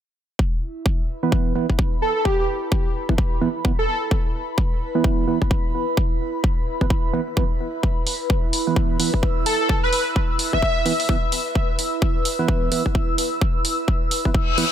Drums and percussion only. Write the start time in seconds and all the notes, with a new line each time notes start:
0.39 kick
0.86 kick
1.32 kick
1.70 kick
1.79 kick
2.25 kick
2.72 kick
3.09 kick
3.18 kick
3.65 kick
4.11 kick
4.58 kick
5.04 kick
5.42 kick
5.51 kick
5.97 kick
6.44 kick
6.81 kick
6.90 kick
7.37 kick
7.83 kick
8.07 open hi-hat
8.30 kick
8.53 open hi-hat
8.76 kick
9.00 open hi-hat
9.14 kick
9.23 kick
9.46 open hi-hat
9.69 kick
9.93 open hi-hat
10.16 kick
10.39 open hi-hat
10.53 kick
10.62 kick
10.86 open hi-hat
11.00 open hi-hat
11.09 kick
11.32 open hi-hat
11.55 kick
11.79 open hi-hat
12.02 kick
12.25 open hi-hat
12.48 kick
12.72 open hi-hat
12.86 kick
12.95 kick
13.18 open hi-hat
13.41 kick
13.65 open hi-hat
13.88 kick
14.11 open hi-hat
14.25 kick
14.34 kick
14.58 open hi-hat